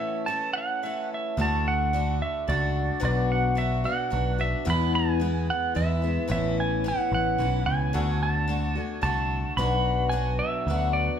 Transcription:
Already playing: twelve-string acoustic guitar A2 E3 A3 C#4 A4, electric slide guitar E5
0.26 twelve-string acoustic guitar E3 A3 C#4 A4, electric slide guitar A5
0.53 electric slide guitar F#5
0.58 electric slide guitar F#5
0.83 twelve-string acoustic guitar E3 A3 C#4 A4, electric slide guitar E5
1.14 electric slide guitar E5
1.37 picked electric bass D2, twelve-string acoustic guitar D3 A3 D4 F#4
1.41 electric slide guitar A5
1.68 electric slide guitar F#5
1.93 twelve-string acoustic guitar D3 A3 D4 F#4
2.22 electric slide guitar E5
2.48 picked electric bass C#2, twelve-string acoustic guitar A3 D4 F#4, electric slide guitar D5
3.00 picked electric bass B1, twelve-string acoustic guitar B2 F#3 B3 D4 F#4
3.05 electric slide guitar D5
3.32 electric slide guitar F#5
3.55 twelve-string acoustic guitar F#3 B3 D4 F#4, electric slide guitar E5
3.84 twelve-string acoustic guitar B3 D4 F#4, electric slide guitar F#5
4.10 picked electric bass B1, twelve-string acoustic guitar F#3 B3 D4 F#4
4.38 twelve-string acoustic guitar B3 D4 F#4, electric slide guitar E5
4.65 twelve-string acoustic guitar E2 B2 E3 G#3 B3 E4, picked electric bass E2
4.70 electric slide guitar B5
4.95 electric slide guitar G#5
5.20 twelve-string acoustic guitar E3 G#3 B3 E4
5.50 electric slide guitar F#5
5.75 picked electric bass E2, twelve-string acoustic guitar E3 G#3 B3 E4, electric slide guitar E5
6.02 twelve-string acoustic guitar E3 G#3 B3 E4
6.28 picked electric bass A1, twelve-string acoustic guitar A2 E3 B3 C#4 E4, electric slide guitar E5
6.60 electric slide guitar G#5
6.84 twelve-string acoustic guitar E3 B3 C#4 E4
6.88 electric slide guitar F#5
7.12 picked electric bass A1, electric slide guitar F#5
7.38 picked electric bass B1, twelve-string acoustic guitar E3 B3 C#4 E4
7.66 picked electric bass C#2, electric slide guitar G#5
7.93 picked electric bass D2, twelve-string acoustic guitar D3 A3 D4 F#4
8.23 electric slide guitar A5
8.48 twelve-string acoustic guitar D3 A3 D4 F#4
8.75 twelve-string acoustic guitar A3 D4 F#4
8.81 electric slide guitar G#5
9.01 picked electric bass C2, twelve-string acoustic guitar D3 A3 D4 F#4, electric slide guitar A5
9.57 picked electric bass B1, twelve-string acoustic guitar B2 F#3 B3 D4 F#4, electric slide guitar B5
10.09 twelve-string acoustic guitar F#3 B3 D4, electric slide guitar G#5
10.14 twelve-string acoustic guitar F#4
10.39 electric slide guitar E5
10.67 picked electric bass D2, twelve-string acoustic guitar F#3 B3 D4 F#4
10.93 electric slide guitar D5

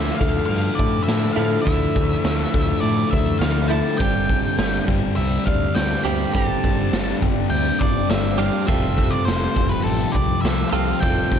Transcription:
Already playing: picked electric bass D2, distorted electric guitar D3 A3 D4, clean electric guitar D3 F3 A3 E4, twelve-string acoustic guitar F3 A3 E4, lead electric guitar E5
0.17 distorted electric guitar D4, twelve-string acoustic guitar A4, lead electric guitar F5
0.21 picked electric bass D2, distorted electric guitar D3 A3, kick, open hi-hat
0.46 picked electric bass G2, twelve-string acoustic guitar A3, lead electric guitar F5, open hi-hat
0.75 twelve-string acoustic guitar E4, lead electric guitar D5
0.79 picked electric bass A2, kick, open hi-hat
1.04 lead electric guitar E5
1.08 picked electric bass A2, twelve-string acoustic guitar A3, snare, open hi-hat
1.33 clean electric guitar E4, twelve-string acoustic guitar A4, lead electric guitar F5
1.37 picked electric bass A2, clean electric guitar D3 F3 A3, open hi-hat
1.62 clean electric guitar D3, distorted electric guitar D3, lead electric guitar E5
1.66 picked electric bass D2, clean electric guitar F3 A3 E4, twelve-string acoustic guitar F3, distorted electric guitar A3 D4, kick, open hi-hat
1.95 picked electric bass D2, twelve-string acoustic guitar A3, kick, open hi-hat
2.25 picked electric bass D2, twelve-string acoustic guitar E4, snare, open hi-hat
2.53 picked electric bass D2, distorted electric guitar D3 A3 D4, twelve-string acoustic guitar A4, kick, open hi-hat
2.81 picked electric bass A2, twelve-string acoustic guitar A3, lead electric guitar D5, open hi-hat
3.11 picked electric bass D2, twelve-string acoustic guitar E4, lead electric guitar E5, kick, open hi-hat
3.39 picked electric bass D2, twelve-string acoustic guitar A3, lead electric guitar F5, snare, open hi-hat
3.68 clean electric guitar A3 E4, twelve-string acoustic guitar A4, lead electric guitar A5, open hi-hat
3.72 clean electric guitar D3 F3
3.98 picked electric bass G1, distorted electric guitar G2 D3, clean electric guitar G2 D3 G3 C4 D4 G4, twelve-string acoustic guitar C4, lead electric guitar G5, kick, open hi-hat
4.03 distorted electric guitar G3
4.29 twelve-string acoustic guitar C4, kick, open hi-hat
4.58 picked electric bass G1, twelve-string acoustic guitar D4, snare, open hi-hat
4.87 picked electric bass G1, distorted electric guitar G2 D3 G3, twelve-string acoustic guitar G4, kick, open hi-hat
5.16 picked electric bass C2, twelve-string acoustic guitar C4, lead electric guitar E5, open hi-hat
5.46 picked electric bass D2, twelve-string acoustic guitar D4, lead electric guitar F5, kick, open hi-hat
5.75 picked electric bass D2, twelve-string acoustic guitar C4, lead electric guitar G5, snare, open hi-hat
6.03 picked electric bass D2, clean electric guitar G2 D3 G3 C4 D4 G4, twelve-string acoustic guitar G4, lead electric guitar B5, open hi-hat
6.34 picked electric bass G1, distorted electric guitar G2 D3 G3, clean electric guitar G2 D3 G3 C4 D4 G4, twelve-string acoustic guitar C4, lead electric guitar A5, kick, open hi-hat
6.63 picked electric bass G1, twelve-string acoustic guitar C4, kick, open hi-hat
6.92 picked electric bass G1, twelve-string acoustic guitar D4, snare, open hi-hat
7.21 picked electric bass G1, distorted electric guitar G2 D3 G3, twelve-string acoustic guitar G4, kick, open hi-hat
7.50 picked electric bass D2, twelve-string acoustic guitar C4, lead electric guitar G5, open hi-hat
7.79 picked electric bass G1, twelve-string acoustic guitar D4, lead electric guitar D5, kick, open hi-hat
8.09 picked electric bass G1, twelve-string acoustic guitar C4, lead electric guitar E5, snare, open hi-hat
8.38 clean electric guitar G2 D3 G3 C4 D4 G4, twelve-string acoustic guitar G4, lead electric guitar F5, open hi-hat
8.66 picked electric bass F1, distorted electric guitar F2 C3, clean electric guitar F3 G3 C4 F4 A4, twelve-string acoustic guitar F3, lead electric guitar E5, kick, open hi-hat
8.71 distorted electric guitar F3
8.97 twelve-string acoustic guitar A3, kick, open hi-hat
9.11 lead electric guitar D5
9.25 picked electric bass F1, twelve-string acoustic guitar C4, lead electric guitar C5, snare, open hi-hat
9.55 picked electric bass F1, distorted electric guitar F2 C3 F3, twelve-string acoustic guitar G4, kick, open hi-hat
9.69 lead electric guitar B4
9.84 picked electric bass A1, twelve-string acoustic guitar A3, lead electric guitar A4, open hi-hat
10.12 picked electric bass C2, twelve-string acoustic guitar C4, lead electric guitar D5, kick, open hi-hat
10.42 picked electric bass C2, twelve-string acoustic guitar A3, lead electric guitar E5, snare, open hi-hat
10.69 picked electric bass C2, clean electric guitar F4 A4, twelve-string acoustic guitar G4, lead electric guitar F5
10.74 clean electric guitar F3 G3 C4, open hi-hat
11.00 picked electric bass F1, distorted electric guitar F2 C3, clean electric guitar F3 G3 C4 F4, twelve-string acoustic guitar F3, lead electric guitar G5, kick, open hi-hat
11.04 distorted electric guitar F3, clean electric guitar A4
11.31 picked electric bass F1, twelve-string acoustic guitar A3, kick, open hi-hat

